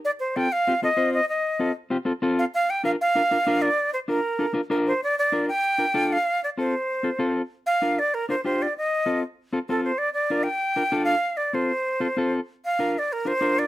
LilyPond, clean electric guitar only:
\new Staff \with { instrumentName = "Clean electric guitar" } { \time 4/4 \key bes \major \tempo 4 = 193 r4 <c' f' a'>8 r8 <c' f' g'>8 <c' f' a'>8 <c' f' c''>8 r8 | r4 <c' f' a'>8 r8 <c' f' g'>8 <c' f' a'>8 <c' f' a'>8 r8 | r4 <d' f' bes'>8 r8 <d' f' bes'>8 <d' f' bes'>8 <d' f' bes'>8 r8 | r4 <d' f' bes'>8 r8 <d' f' a'>8 <d' f' bes'>8 <d' f' bes'>8 r8 |
r4 <d' f' bes'>8 r4 <d' f' bes'>8 <d' f' a'>8 r8 | r4 <c' f' a'>8 r4 <c' f' a'>8 <c' f' a'>8 r8 | r4 <d' f' bes'>8 r4 <d' f' bes'>8 <d' f' g'>8 r8 | r4 <c' f' a'>8 r4 <c' f' a'>8 <c' f' a'>8 r8 |
r4 <d' f' bes'>8 r4 <d' f' bes'>8 <d' f' a'>8 r8 | r4 <c' f' a'>8 r4 <c' f' a'>8 <c' f' a'>8 r8 | r4 <d' f' bes'>8 r4 <d' f' bes'>8 <d' f' bes'>8 r8 | }